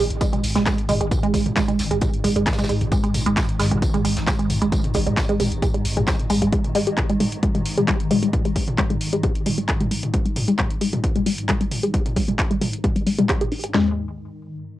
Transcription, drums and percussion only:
0.11 closed hi-hat
0.21 kick, closed hi-hat, tambourine
0.33 closed hi-hat, mid tom
0.43 open hi-hat, tambourine
0.55 snare, closed hi-hat, mid tom
0.66 kick, snare, clap, closed hi-hat, tambourine
0.78 closed hi-hat
0.89 mid tom, open hi-hat, tambourine
1.01 closed hi-hat
1.11 kick, closed hi-hat, mid tom, tambourine
1.23 closed hi-hat
1.34 kick, open hi-hat, tambourine
1.46 closed hi-hat, mid tom
1.56 kick, snare, clap, closed hi-hat, tambourine
1.68 closed hi-hat, mid tom
1.79 snare, open hi-hat, tambourine
1.91 closed hi-hat
2.01 kick, closed hi-hat, mid tom, tambourine
2.13 closed hi-hat
2.24 mid tom, open hi-hat, tambourine
2.36 closed hi-hat
2.46 kick, snare, clap, closed hi-hat, tambourine
2.53 snare, tambourine
2.58 snare, closed hi-hat, mid tom, tambourine
2.64 snare, tambourine
2.69 open hi-hat, tambourine
2.81 closed hi-hat, mid tom
2.92 kick, closed hi-hat, tambourine
3.04 closed hi-hat
3.14 mid tom, open hi-hat, tambourine
3.26 closed hi-hat
3.37 kick, snare, clap, closed hi-hat, mid tom, tambourine
3.49 closed hi-hat
3.59 snare, open hi-hat, tambourine
3.71 closed hi-hat, mid tom
3.82 kick, closed hi-hat, tambourine
3.94 closed hi-hat, mid tom
4.05 open hi-hat, tambourine
4.16 snare, closed hi-hat
4.27 kick, snare, clap, closed hi-hat, mid tom, tambourine
4.39 closed hi-hat
4.50 mid tom, open hi-hat, tambourine
4.62 closed hi-hat
4.72 kick, closed hi-hat, tambourine
4.84 closed hi-hat, mid tom
4.94 kick, open hi-hat, tambourine
5.07 closed hi-hat, mid tom
5.17 kick, snare, clap, closed hi-hat, tambourine
5.29 closed hi-hat
5.40 mid tom, open hi-hat, tambourine
5.52 closed hi-hat
5.62 kick, closed hi-hat, mid tom, tambourine
5.74 closed hi-hat
5.85 open hi-hat, tambourine
5.97 closed hi-hat, mid tom
6.07 kick, snare, clap, closed hi-hat, tambourine
6.20 closed hi-hat, mid tom
6.30 open hi-hat, tambourine
6.42 closed hi-hat
6.53 kick, closed hi-hat
6.65 closed hi-hat, mid tom
6.75 open hi-hat
6.87 closed hi-hat
6.98 kick, clap, closed hi-hat, mid tom
7.10 closed hi-hat
7.20 mid tom, open hi-hat
7.32 closed hi-hat
7.43 kick, closed hi-hat
7.55 closed hi-hat, mid tom
7.65 open hi-hat
7.77 closed hi-hat, mid tom
7.88 kick, clap, closed hi-hat
8.00 closed hi-hat
8.11 mid tom, open hi-hat
8.22 closed hi-hat
8.33 kick, closed hi-hat, mid tom
8.45 closed hi-hat
8.56 kick, open hi-hat
8.68 closed hi-hat, mid tom
8.78 kick, clap, closed hi-hat
8.90 closed hi-hat, mid tom
9.01 open hi-hat
9.13 closed hi-hat
9.23 kick, closed hi-hat, mid tom
9.35 closed hi-hat
9.46 mid tom, open hi-hat
9.58 closed hi-hat
9.68 kick, clap, closed hi-hat
9.80 closed hi-hat, mid tom
9.91 open hi-hat
10.03 closed hi-hat, mid tom
10.14 kick, closed hi-hat
10.26 closed hi-hat
10.36 mid tom, open hi-hat
10.48 closed hi-hat
10.59 kick, clap, closed hi-hat, mid tom
10.71 closed hi-hat
10.81 open hi-hat
10.93 closed hi-hat, mid tom
11.04 kick, closed hi-hat
11.16 closed hi-hat, mid tom
11.26 open hi-hat
11.38 closed hi-hat
11.49 kick, clap, closed hi-hat, mid tom
11.61 closed hi-hat
11.71 mid tom, open hi-hat
11.83 closed hi-hat
11.94 kick, closed hi-hat
12.06 closed hi-hat, mid tom
12.17 kick, open hi-hat
12.29 closed hi-hat, mid tom
12.39 kick, clap, closed hi-hat
12.51 closed hi-hat
12.62 mid tom, open hi-hat
12.74 closed hi-hat
12.84 kick, closed hi-hat, mid tom
12.96 closed hi-hat
13.07 open hi-hat
13.19 closed hi-hat, mid tom
13.29 kick, clap, closed hi-hat
13.41 closed hi-hat, mid tom
13.52 open hi-hat
13.64 closed hi-hat
13.74 snare, clap, floor tom

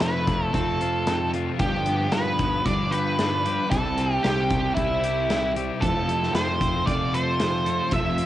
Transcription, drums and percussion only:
0.00 snare, closed hi-hat
0.28 kick, closed hi-hat
0.54 kick, closed hi-hat
0.81 closed hi-hat
1.07 snare, closed hi-hat
1.34 closed hi-hat
1.59 kick, closed hi-hat
1.86 closed hi-hat
2.12 snare, closed hi-hat
2.39 kick, closed hi-hat
2.66 kick, closed hi-hat
2.92 closed hi-hat
3.19 snare, closed hi-hat
3.46 closed hi-hat
3.72 kick, closed hi-hat
3.98 closed hi-hat
4.24 snare, closed hi-hat
4.50 kick, closed hi-hat
4.77 kick, closed hi-hat
5.04 closed hi-hat
5.30 snare, closed hi-hat
5.56 closed hi-hat
5.82 kick, closed hi-hat
6.09 closed hi-hat
6.23 snare
6.35 snare, closed hi-hat
6.61 kick, closed hi-hat
6.87 kick, closed hi-hat
7.14 closed hi-hat
7.39 snare, closed hi-hat
7.66 closed hi-hat
7.91 kick, closed hi-hat
8.18 closed hi-hat

